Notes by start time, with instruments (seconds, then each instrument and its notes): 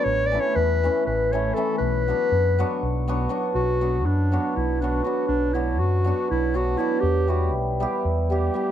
Already playing: hammered dulcimer F#3
0.04 fingered electric bass A1, clarinet C#5
0.27 clarinet D5
0.32 hammered dulcimer E3 A3 C#4 E4
0.40 clarinet C#5
0.56 fingered electric bass E2, clarinet B4
0.83 hammered dulcimer E3 A3 C#4 E4
1.06 fingered electric bass A1, clarinet B4
1.32 hammered dulcimer E3 A3 C#4 E4, clarinet C#5
1.54 hammered dulcimer E3 A3 C#4 E4, clarinet A4
1.78 fingered electric bass B1, clarinet B4
2.08 hammered dulcimer F#3 B3 D4 F#4
2.32 fingered electric bass F#2
2.59 hammered dulcimer F#3 B3 D4 F#4
2.83 fingered electric bass B1
3.08 hammered dulcimer F#3 B3 D4 F#4
3.29 hammered dulcimer F#3 B3 D4 F#4
3.55 fingered electric bass B1, clarinet F#4
3.81 hammered dulcimer F#3 B3 D4 F#4
4.06 fingered electric bass F#2, clarinet D4
4.32 hammered dulcimer F#3 B3 D4 F#4
4.56 fingered electric bass B1, clarinet E4
4.81 hammered dulcimer F#3 B3 D4 F#4, clarinet D4
5.03 hammered dulcimer F#3 B3 D4 F#4, clarinet F#4
5.28 fingered electric bass B1, clarinet D4
5.53 hammered dulcimer F#3 B3 D4 F#4, clarinet E4
5.79 fingered electric bass F#2, clarinet F#4
6.04 hammered dulcimer F#3 B3 D4 F#4
6.31 fingered electric bass B1, clarinet E4
6.54 hammered dulcimer F#3 B3 D4 F#4, clarinet F#4
6.77 hammered dulcimer F#3 B3 D4 F#4, clarinet E4
7.00 fingered electric bass E2, clarinet G4
7.27 hammered dulcimer G3 B3 E4 G4, clarinet F#4
7.53 fingered electric bass B1
7.80 hammered dulcimer G3 B3 E4 G4
8.05 fingered electric bass E2
8.29 hammered dulcimer G3 B3 E4 G4, clarinet G4
8.54 hammered dulcimer G3 B3 E4 G4